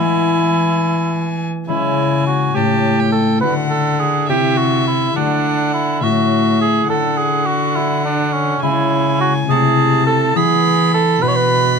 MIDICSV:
0, 0, Header, 1, 5, 480
1, 0, Start_track
1, 0, Tempo, 583658
1, 1387, Time_signature, 6, 3, 24, 8
1, 3297, Tempo, 576369
1, 9779, End_track
2, 0, Start_track
2, 0, Title_t, "Violin"
2, 0, Program_c, 0, 40
2, 0, Note_on_c, 0, 80, 61
2, 1196, Note_off_c, 0, 80, 0
2, 1388, Note_on_c, 0, 80, 51
2, 2107, Note_on_c, 0, 81, 48
2, 2119, Note_off_c, 0, 80, 0
2, 2464, Note_on_c, 0, 79, 49
2, 2476, Note_off_c, 0, 81, 0
2, 2818, Note_off_c, 0, 79, 0
2, 2823, Note_on_c, 0, 78, 52
2, 3524, Note_off_c, 0, 78, 0
2, 3537, Note_on_c, 0, 76, 54
2, 4259, Note_on_c, 0, 78, 54
2, 4272, Note_off_c, 0, 76, 0
2, 4979, Note_off_c, 0, 78, 0
2, 4985, Note_on_c, 0, 76, 52
2, 5688, Note_off_c, 0, 76, 0
2, 5700, Note_on_c, 0, 78, 57
2, 7111, Note_off_c, 0, 78, 0
2, 7142, Note_on_c, 0, 80, 59
2, 7867, Note_on_c, 0, 81, 57
2, 7880, Note_off_c, 0, 80, 0
2, 8589, Note_on_c, 0, 83, 61
2, 8601, Note_off_c, 0, 81, 0
2, 9295, Note_off_c, 0, 83, 0
2, 9300, Note_on_c, 0, 83, 58
2, 9779, Note_off_c, 0, 83, 0
2, 9779, End_track
3, 0, Start_track
3, 0, Title_t, "Cor anglais"
3, 0, Program_c, 1, 69
3, 0, Note_on_c, 1, 64, 78
3, 1152, Note_off_c, 1, 64, 0
3, 1390, Note_on_c, 1, 64, 67
3, 1832, Note_off_c, 1, 64, 0
3, 1863, Note_on_c, 1, 66, 68
3, 2098, Note_on_c, 1, 67, 70
3, 2110, Note_off_c, 1, 66, 0
3, 2565, Note_off_c, 1, 67, 0
3, 2570, Note_on_c, 1, 69, 67
3, 2799, Note_off_c, 1, 69, 0
3, 2804, Note_on_c, 1, 71, 74
3, 2915, Note_off_c, 1, 71, 0
3, 3043, Note_on_c, 1, 69, 70
3, 3292, Note_on_c, 1, 68, 74
3, 3304, Note_off_c, 1, 69, 0
3, 3532, Note_off_c, 1, 68, 0
3, 3537, Note_on_c, 1, 67, 68
3, 3772, Note_on_c, 1, 66, 67
3, 3784, Note_off_c, 1, 67, 0
3, 4012, Note_off_c, 1, 66, 0
3, 4017, Note_on_c, 1, 64, 67
3, 4251, Note_off_c, 1, 64, 0
3, 4256, Note_on_c, 1, 62, 72
3, 4728, Note_off_c, 1, 62, 0
3, 4739, Note_on_c, 1, 64, 67
3, 4982, Note_on_c, 1, 66, 73
3, 4994, Note_off_c, 1, 64, 0
3, 5460, Note_off_c, 1, 66, 0
3, 5465, Note_on_c, 1, 68, 77
3, 5697, Note_off_c, 1, 68, 0
3, 5702, Note_on_c, 1, 69, 78
3, 5936, Note_on_c, 1, 68, 75
3, 5949, Note_off_c, 1, 69, 0
3, 6173, Note_on_c, 1, 66, 74
3, 6186, Note_off_c, 1, 68, 0
3, 6416, Note_on_c, 1, 64, 74
3, 6428, Note_off_c, 1, 66, 0
3, 6658, Note_off_c, 1, 64, 0
3, 6661, Note_on_c, 1, 62, 68
3, 6895, Note_on_c, 1, 61, 69
3, 6908, Note_off_c, 1, 62, 0
3, 7137, Note_off_c, 1, 61, 0
3, 7143, Note_on_c, 1, 64, 83
3, 7612, Note_off_c, 1, 64, 0
3, 7626, Note_on_c, 1, 66, 81
3, 7732, Note_off_c, 1, 66, 0
3, 7866, Note_on_c, 1, 68, 84
3, 8331, Note_off_c, 1, 68, 0
3, 8340, Note_on_c, 1, 69, 80
3, 8574, Note_off_c, 1, 69, 0
3, 8585, Note_on_c, 1, 68, 89
3, 9052, Note_off_c, 1, 68, 0
3, 9069, Note_on_c, 1, 69, 85
3, 9305, Note_on_c, 1, 71, 85
3, 9318, Note_off_c, 1, 69, 0
3, 9354, Note_on_c, 1, 73, 71
3, 9367, Note_off_c, 1, 71, 0
3, 9420, Note_on_c, 1, 71, 84
3, 9432, Note_off_c, 1, 73, 0
3, 9777, Note_off_c, 1, 71, 0
3, 9779, End_track
4, 0, Start_track
4, 0, Title_t, "Harp"
4, 0, Program_c, 2, 46
4, 0, Note_on_c, 2, 52, 50
4, 0, Note_on_c, 2, 56, 44
4, 0, Note_on_c, 2, 59, 45
4, 0, Note_on_c, 2, 64, 41
4, 1376, Note_off_c, 2, 56, 0
4, 1384, Note_on_c, 2, 49, 43
4, 1387, Note_on_c, 2, 56, 40
4, 1388, Note_off_c, 2, 64, 0
4, 1391, Note_on_c, 2, 61, 39
4, 1396, Note_off_c, 2, 59, 0
4, 1398, Note_on_c, 2, 64, 36
4, 1407, Note_off_c, 2, 52, 0
4, 2099, Note_off_c, 2, 61, 0
4, 2103, Note_on_c, 2, 45, 44
4, 2104, Note_off_c, 2, 64, 0
4, 2106, Note_on_c, 2, 57, 36
4, 2109, Note_on_c, 2, 61, 39
4, 2114, Note_on_c, 2, 64, 39
4, 2120, Note_off_c, 2, 49, 0
4, 2120, Note_off_c, 2, 56, 0
4, 2805, Note_off_c, 2, 57, 0
4, 2815, Note_on_c, 2, 50, 43
4, 2817, Note_on_c, 2, 57, 38
4, 2819, Note_on_c, 2, 62, 37
4, 2825, Note_on_c, 2, 66, 38
4, 2839, Note_off_c, 2, 45, 0
4, 2841, Note_off_c, 2, 61, 0
4, 2844, Note_off_c, 2, 64, 0
4, 3536, Note_on_c, 2, 48, 46
4, 3541, Note_on_c, 2, 60, 39
4, 3544, Note_on_c, 2, 64, 40
4, 3548, Note_on_c, 2, 67, 42
4, 3554, Note_off_c, 2, 57, 0
4, 3555, Note_off_c, 2, 50, 0
4, 3556, Note_off_c, 2, 62, 0
4, 3559, Note_off_c, 2, 66, 0
4, 4258, Note_on_c, 2, 50, 40
4, 4264, Note_on_c, 2, 57, 38
4, 4266, Note_on_c, 2, 62, 37
4, 4270, Note_on_c, 2, 66, 40
4, 4278, Note_off_c, 2, 48, 0
4, 4278, Note_off_c, 2, 60, 0
4, 4281, Note_off_c, 2, 64, 0
4, 4283, Note_off_c, 2, 67, 0
4, 4970, Note_off_c, 2, 57, 0
4, 4980, Note_on_c, 2, 45, 47
4, 4981, Note_on_c, 2, 57, 43
4, 4984, Note_on_c, 2, 61, 39
4, 4990, Note_on_c, 2, 64, 39
4, 4999, Note_off_c, 2, 50, 0
4, 5002, Note_off_c, 2, 62, 0
4, 5004, Note_off_c, 2, 66, 0
4, 5698, Note_on_c, 2, 50, 43
4, 5720, Note_off_c, 2, 45, 0
4, 5721, Note_off_c, 2, 61, 0
4, 5724, Note_off_c, 2, 64, 0
4, 6423, Note_on_c, 2, 62, 42
4, 6428, Note_on_c, 2, 66, 51
4, 7139, Note_on_c, 2, 49, 47
4, 7144, Note_on_c, 2, 56, 43
4, 7148, Note_on_c, 2, 64, 42
4, 7158, Note_off_c, 2, 50, 0
4, 7159, Note_off_c, 2, 57, 0
4, 7161, Note_off_c, 2, 62, 0
4, 7164, Note_off_c, 2, 66, 0
4, 7856, Note_off_c, 2, 64, 0
4, 7857, Note_on_c, 2, 48, 50
4, 7863, Note_on_c, 2, 57, 45
4, 7866, Note_on_c, 2, 64, 47
4, 7879, Note_off_c, 2, 49, 0
4, 7879, Note_off_c, 2, 56, 0
4, 8576, Note_off_c, 2, 64, 0
4, 8580, Note_on_c, 2, 52, 48
4, 8582, Note_on_c, 2, 59, 45
4, 8586, Note_on_c, 2, 64, 44
4, 8597, Note_off_c, 2, 48, 0
4, 8597, Note_off_c, 2, 57, 0
4, 9292, Note_off_c, 2, 59, 0
4, 9302, Note_on_c, 2, 47, 50
4, 9303, Note_on_c, 2, 59, 44
4, 9310, Note_on_c, 2, 62, 46
4, 9315, Note_on_c, 2, 66, 46
4, 9319, Note_off_c, 2, 52, 0
4, 9321, Note_off_c, 2, 64, 0
4, 9779, Note_off_c, 2, 47, 0
4, 9779, Note_off_c, 2, 59, 0
4, 9779, Note_off_c, 2, 62, 0
4, 9779, Note_off_c, 2, 66, 0
4, 9779, End_track
5, 0, Start_track
5, 0, Title_t, "Cello"
5, 0, Program_c, 3, 42
5, 0, Note_on_c, 3, 52, 59
5, 1198, Note_off_c, 3, 52, 0
5, 1386, Note_on_c, 3, 49, 56
5, 2068, Note_off_c, 3, 49, 0
5, 2102, Note_on_c, 3, 45, 55
5, 2820, Note_on_c, 3, 50, 52
5, 2832, Note_off_c, 3, 45, 0
5, 3537, Note_on_c, 3, 48, 56
5, 3550, Note_off_c, 3, 50, 0
5, 4254, Note_off_c, 3, 48, 0
5, 4259, Note_on_c, 3, 50, 58
5, 4977, Note_on_c, 3, 45, 56
5, 4989, Note_off_c, 3, 50, 0
5, 5689, Note_off_c, 3, 45, 0
5, 5694, Note_on_c, 3, 50, 61
5, 7108, Note_off_c, 3, 50, 0
5, 7137, Note_on_c, 3, 49, 66
5, 7843, Note_off_c, 3, 49, 0
5, 7857, Note_on_c, 3, 48, 64
5, 8578, Note_on_c, 3, 52, 61
5, 8590, Note_off_c, 3, 48, 0
5, 9293, Note_off_c, 3, 52, 0
5, 9298, Note_on_c, 3, 47, 64
5, 9779, Note_off_c, 3, 47, 0
5, 9779, End_track
0, 0, End_of_file